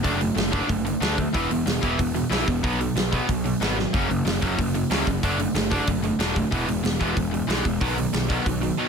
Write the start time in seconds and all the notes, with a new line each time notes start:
0.03 F#1 D3 F#3 A3 D4, kick, open hi-hat
0.19 D3 F#3 A3, open hi-hat
0.35 F#1 D3 F#3 A3, snare, open hi-hat
0.51 D3 F#3 A3 D4, kick, open hi-hat
0.68 F#1 D3 F#3 A3, kick, open hi-hat
0.85 D3 F#3 A3, open hi-hat
1.00 D2 D3 F#3 A3 D4, snare, open hi-hat
1.17 D3 F#3 A3, kick, open hi-hat
1.33 E1 E2 B2 E3 B3 E4, kick, open hi-hat
1.50 E1 E2 B2 E3 B3, open hi-hat
1.66 E1 E2 B2 E3 B3, snare, open hi-hat
1.81 E1 E2 B2 E3 B3 E4, kick, open hi-hat
1.98 E1 E2 B2 E3 B3, kick, open hi-hat
2.14 E2 B2 E3 B3, open hi-hat
2.30 B1 E2 B2 E3 B3 E4, snare, open hi-hat
2.46 E1 E2 B2 E3 B3, kick, open hi-hat
2.63 B1 B2 F#3 B3, kick, open hi-hat
2.79 B2 F#3, open hi-hat
2.95 B1 B2 F#3, snare, open hi-hat
3.11 B2 F#3 B3, kick, open hi-hat
3.27 B1 B2 F#3, kick, open hi-hat
3.44 B2 F#3, open hi-hat
3.60 G#1 B2 F#3 B3, snare, open hi-hat
3.77 B2 F#3, snare
3.93 F#1 F#2 C#3 F#3 A#3 C#4, kick, open hi-hat
4.09 F#1 F#2 C#3 F#3 A#3, open hi-hat
4.25 F#1 F#2 C#3 F#3 A#3, snare, open hi-hat
4.41 F#1 F#2 C#3 F#3 A#3 C#4, kick, open hi-hat
4.59 F#1 F#2 C#3 F#3 A#3, kick, open hi-hat
4.74 F#2 C#3 F#3 A#3, open hi-hat
4.90 C#2 F#2 C#3 F#3 A#3 C#4, snare, open hi-hat
5.06 F#1 F#2 C#3 F#3 A#3, kick, open hi-hat
5.23 F#1 D3 F#3 A3 D4, kick, open hi-hat
5.39 D3 F#3 A3, open hi-hat
5.54 F#1 D3 F#3 A3, snare, open hi-hat
5.70 D3 F#3 A3 D4, kick, open hi-hat
5.86 F#1 D3 F#3 A3, kick, open hi-hat
6.03 D3 F#3 A3, open hi-hat
6.19 E1 D3 F#3 A3 D4, snare, open hi-hat
6.35 D3 F#3 A3, kick, open hi-hat
6.51 E1 E2 B2 E3 G#3 B3, kick, open hi-hat
6.68 E1 E2 B2 E3 G#3, open hi-hat
6.83 E1 E2 B2 E3 G#3, snare, open hi-hat
6.99 E1 E2 B2 E3 G#3 B3, kick, open hi-hat
7.15 E1 E2 B2 E3 G#3, kick, open hi-hat
7.31 E2 B2 E3 G#3, open hi-hat
7.47 B1 E2 B2 E3 G#3 B3, snare, open hi-hat
7.64 E1 E2 B2 E3 G#3, kick, open hi-hat
7.81 B1 B2 D#3 F#3 B3, kick, open hi-hat
7.97 B2 D#3 F#3, open hi-hat
8.13 B1 B2 D#3 F#3, snare, open hi-hat
8.29 B2 D#3 F#3 B3, kick, open hi-hat
8.45 B1 B2 D#3 F#3, kick, open hi-hat
8.61 B2 D#3 F#3, open hi-hat
8.77 B2 D#3 F#3 B3